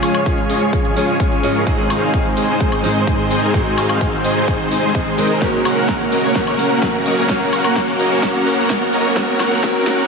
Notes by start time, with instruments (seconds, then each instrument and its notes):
Already playing: steel-string acoustic guitar C#3 G#3 C#4 F4 G#4, analog synth pad F3 G#3 C#4 G#4 C#5, riser
0.03 supersaw synth G#3 C#4 F4 G#4 F5, open hi-hat, high woodblock
0.15 closed hi-hat, high woodblock
0.26 supersaw synth G#3 C#4 F4 G#4 F5, kick, closed hi-hat
0.38 closed hi-hat
0.49 supersaw synth G#3 C#4 F4 G#4 D#5, open hi-hat
0.61 supersaw synth G#3 C#4 F4 G#4 C#5, closed hi-hat
0.73 supersaw synth G#3 C#4 F4 G#4 C#5, kick, closed hi-hat
0.85 closed hi-hat
0.96 steel-string acoustic guitar C#3 G#3 C#4 F4 G#4, supersaw synth G#3 C#4 F4 G#4 C#5, open hi-hat
1.08 closed hi-hat
1.20 supersaw synth G#3 C#4 F4 G#4, kick, closed hi-hat
1.32 closed hi-hat
1.43 steel-string acoustic guitar G#2 G#3 C#4 F4 G#4, supersaw synth G#3 C#4 F4 G#4 D#5, open hi-hat
1.55 supersaw synth G#3 C#4 F4 G#4 A#4, closed hi-hat
1.65 steel-string acoustic guitar G#2 G#3 C4 D#4 G#4, analog synth pad D#3 C4 G#4 C5, supersaw synth G#3 C4 D#4 G#4, kick, closed hi-hat
1.78 closed hi-hat
1.90 supersaw synth G#3 C4 D#4 G#4 F5, open hi-hat, high woodblock
2.02 closed hi-hat
2.14 supersaw synth G#3 C4 D#4 G#4 F5, kick, closed hi-hat
2.25 closed hi-hat
2.37 supersaw synth G#3 C4 D#4 G#4 D#5, open hi-hat
2.49 supersaw synth G#3 C4 D#4 G#4 C5, closed hi-hat
2.60 supersaw synth G#3 C4 D#4 G#4 C5, kick, closed hi-hat
2.72 closed hi-hat, high woodblock
2.83 steel-string acoustic guitar G#2 G#3 C4 D#4 G#4, supersaw synth G#3 C4 D#4 G#4 C5, open hi-hat
2.96 closed hi-hat
3.07 supersaw synth G#3 C4 D#4 G#4 C5, kick, closed hi-hat
3.19 closed hi-hat
3.31 supersaw synth G#3 C4 D#4 G#4 D#5, open hi-hat
3.42 supersaw synth G#3 C4 D#4 G#4 A#4, closed hi-hat
3.53 steel-string acoustic guitar G#2 G#3 C4 D#4 F#4, kick, closed hi-hat
3.66 closed hi-hat
3.78 supersaw synth G#3 C4 D#4 G#4 F5, open hi-hat, high woodblock
3.89 closed hi-hat, high woodblock
4.01 supersaw synth G#3 D#4 G#4, kick, closed hi-hat
4.13 closed hi-hat
4.24 supersaw synth G#3 C4 D#4 G#4 D#5, open hi-hat
4.36 supersaw synth G#3 C4 D#4 G#4 C5, closed hi-hat
4.48 supersaw synth C4 D#4 G#4 C5, kick, closed hi-hat
4.60 closed hi-hat
4.71 supersaw synth G#3 C4 D#4 G#4 C5, open hi-hat
4.83 closed hi-hat
4.95 supersaw synth G#3 C4 D#4 G#4 C5, kick, closed hi-hat
5.07 closed hi-hat
5.17 steel-string acoustic guitar G#3 C4 D#4 A#4, supersaw synth G#3 C4 D#4 G#4 D#5, open hi-hat
5.30 supersaw synth G#3 C4 D#4 G#4 A#4
5.40 analog synth pad C#3 F#3 A#3 F#4 A#4, steel-string acoustic guitar A#3 C#4 F#4 A#4, supersaw synth A#3 C#4 F#4 A#4 C#5, kick, snare, closed hi-hat
5.53 closed hi-hat
5.65 supersaw synth A#3 C#4 F#4 A#4 F#5, open hi-hat, high woodblock
5.77 closed hi-hat
5.88 supersaw synth A#3 C#4 F#4 A#4, kick, snare, closed hi-hat
6.00 closed hi-hat
6.12 supersaw synth A#3 C#4 F#4 A#4 D#5, open hi-hat
6.24 supersaw synth A#3 C#4 F#4 A#4 C#5, closed hi-hat
6.34 steel-string acoustic guitar A#3 C#4 F#4 A#4, supersaw synth A#3 C#4 F#4 C#5, kick, snare, closed hi-hat
6.47 closed hi-hat, high woodblock
6.59 supersaw synth A#3 C#4 F#4 A#4 F#5, open hi-hat
6.71 closed hi-hat
6.82 supersaw synth A#3 C#4 F#4 A#4 F#5, kick, snare, closed hi-hat
6.94 closed hi-hat
7.06 supersaw synth A#3 C#4 F#4 A#4 D#5, open hi-hat
7.17 supersaw synth A#3 C#4 F#4 A#4 C#5, closed hi-hat
7.28 steel-string acoustic guitar A#3 C#4 F#4 A#4, supersaw synth A#3 C#4 F#4 A#4 C#5, kick, snare, closed hi-hat
7.41 closed hi-hat
7.53 supersaw synth A#3 C#4 F#4 A#4 F#5, open hi-hat, high woodblock
7.64 closed hi-hat, high woodblock
7.76 supersaw synth A#3 C#4 F#4 A#4 F#5, kick, snare, closed hi-hat
7.88 closed hi-hat
7.99 supersaw synth A#3 C#4 F#4 A#4 D#5, open hi-hat
8.11 supersaw synth A#3 C#4 F#4 A#4 C#5, closed hi-hat
8.22 steel-string acoustic guitar A#3 C#4 F#4 A#4, supersaw synth A#3 C#4 A#4 C#5, kick, snare, closed hi-hat
8.35 closed hi-hat
8.46 supersaw synth A#3 C#4 F#4 A#4 F#5, open hi-hat
8.58 closed hi-hat
8.70 kick, snare, closed hi-hat
8.82 closed hi-hat
8.93 supersaw synth A#3 C#4 F#4 A#4 D#5, open hi-hat
9.05 supersaw synth A#3 C#4 F#4 A#4 C#5, closed hi-hat
9.15 analog synth pad D#3, steel-string acoustic guitar A#3 C#4 F#4 A#4, supersaw synth A#3 C#4 F#4 A#4, kick, snare, closed hi-hat
9.28 closed hi-hat
9.40 supersaw synth A#3 C#4 F#4 A#4 F#5, snare, open hi-hat, high woodblock
9.52 closed hi-hat
9.62 steel-string acoustic guitar A#3 C#4 F#4 A#4, kick, snare, closed hi-hat
9.75 closed hi-hat
9.87 supersaw synth A#3 C#4 F#4 A#4 F#5, snare, open hi-hat
9.99 closed hi-hat